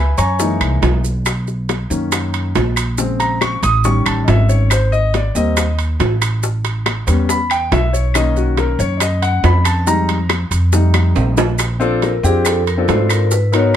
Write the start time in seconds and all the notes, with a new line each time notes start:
Already playing: C#2 B4 E5 G#5 B5
0.18 F#2 C#5 G#5 A#5 C#6, high bongo, high timbale, maracas
0.39 E3 G#3 A#3 D#4, high bongo, maracas
0.61 C2, high timbale, claves, maracas
0.82 B1, high bongo, low bongo, high timbale, low timbale, maracas
1.04 high bongo, maracas
1.26 high bongo, high timbale, claves, maracas
1.47 high bongo, maracas
1.69 high bongo, high timbale, low timbale, maracas
1.90 F#2 D#3 A#3 C#4, high bongo, maracas
2.12 high bongo, high timbale, claves, maracas
2.34 high timbale, maracas
2.55 A#1, high bongo, low bongo, high timbale, low timbale, maracas
2.76 high bongo, high timbale, claves, maracas
2.98 C#3 G#3 C4, high bongo, maracas
3.20 A#5, high bongo, high timbale, maracas
3.41 C#6, high bongo, high timbale, low timbale, claves, maracas
3.63 A1 D#6, high bongo, high timbale, maracas
3.84 D#3 G3 C#4 C#6, high bongo, maracas
4.06 A1 A5, high timbale, claves, maracas
4.24 G#1 D#5, high bongo, low bongo, high timbale, low timbale, maracas
4.29 E5
4.49 C#5, high bongo, maracas
4.70 C5, high bongo, high timbale, claves, maracas
4.92 D#5, high bongo, maracas
5.14 D5, high bongo, high timbale, low timbale, maracas
5.35 D#2 G3 A#3 C4 D#5, high bongo, maracas
5.57 high bongo, high timbale, claves, maracas
5.79 high timbale, maracas
6.00 A1, high bongo, low bongo, high timbale, low timbale, maracas
6.22 high bongo, high timbale, claves, maracas
6.43 high bongo, maracas
6.64 high bongo, high timbale, maracas
6.86 high bongo, high timbale, low timbale, claves, maracas
7.07 E2 G3 B3 C#4, high bongo, high timbale, maracas
7.29 B5, high bongo, maracas
7.50 G5, high timbale, claves, maracas
7.72 B1 E5, high bongo, low bongo, high timbale, low timbale, maracas
7.93 C#5, high bongo, maracas
8.14 D#3 A#3 C#4 D#5, high bongo, high timbale, claves, maracas
8.36 F#4, high bongo, maracas
8.57 A#4, high bongo, high timbale, low timbale, maracas
8.79 F#2 C#5, high bongo, maracas
8.97 D5, high timbale, claves, maracas
9.01 D#5, high bongo
9.22 F#5, high timbale, maracas
9.44 F2 B5, high bongo, low bongo, high timbale, low timbale, maracas
9.65 A5, high bongo, high timbale, claves, maracas
9.87 G3 G#3 D#4 A#5, high bongo, maracas
10.09 high bongo, high timbale, maracas
10.29 high bongo, high timbale, low timbale, claves, maracas
10.51 F2, high bongo, high timbale, maracas
10.73 G3 A3 D#4, high bongo, maracas
10.94 high bongo, high timbale, claves, maracas
11.15 A#1, high timbale, maracas
11.37 low bongo, low timbale, maracas
11.58 high bongo, high timbale, claves, maracas
11.80 C4 D4 F4 A4, high bongo, maracas
12.02 A#4, high bongo, high timbale, low timbale, maracas
12.23 F2 C4 D4 F4 G4 G#4, high bongo, maracas
12.45 A4, high bongo, high timbale, claves, maracas
12.67 A#4, high timbale, maracas
12.77 C4 D4 F4 A4
12.88 G#2 C4 D4 F4 A4 C5, high bongo, low bongo, high timbale, low timbale, maracas
13.10 A#4, high bongo, high timbale, claves, maracas
13.31 B4, high bongo, maracas
13.52 B3 D#4 F#4 A#4 C#5, high bongo, high timbale, maracas